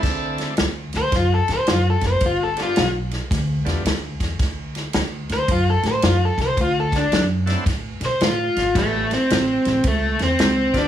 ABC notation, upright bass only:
X:1
M:4/4
L:1/8
Q:"Swing" 1/4=110
K:G
V:1 name="Upright bass" clef=bass
D,,2 D,, D,, F,, A,, F,, F,,, | G,,,2 B,,,2 D,, E,, D,, E,, | D,,2 D,, D,, F,, A,, F,, C,, | D,,2 F,,2 A,, B,, A,, ^G,,, |
A,,,2 A,,, A,,, ^C,, E,, C,, G,,, |]